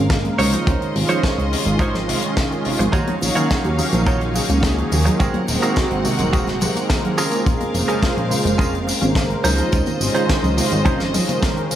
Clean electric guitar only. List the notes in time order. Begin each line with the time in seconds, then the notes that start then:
0.39 D#4 F4 C5 C#5
1.09 D#4 F4 C5 C#5
1.80 D#4 F4 C5 C#5
2.08 muted clean electric guitar stroke
2.79 muted clean electric guitar stroke
2.92 D#4 F4 F#4 C#5
3.35 D#4 F4 F#4 C#5
4.07 D#4 F4 F#4 C#5
4.35 muted clean electric guitar stroke
5.05 muted clean electric guitar stroke
5.20 C4 F#4 G#4 A#4
5.62 C4 F#4 G#4 A#4
6.33 C4 F#4 G#4 A#4
6.61 muted clean electric guitar stroke
7.18 C#4 F4 G#4 A#4
7.88 C#4 F4 G#4 A#4
8.58 C#4 F4 G#4 A#4
8.87 muted clean electric guitar stroke
9.44 C#4 D#4 F4 C5
10.14 C#4 D#4 F4 C5
10.85 C#4 D#4 F4 C5
11.14 muted clean electric guitar stroke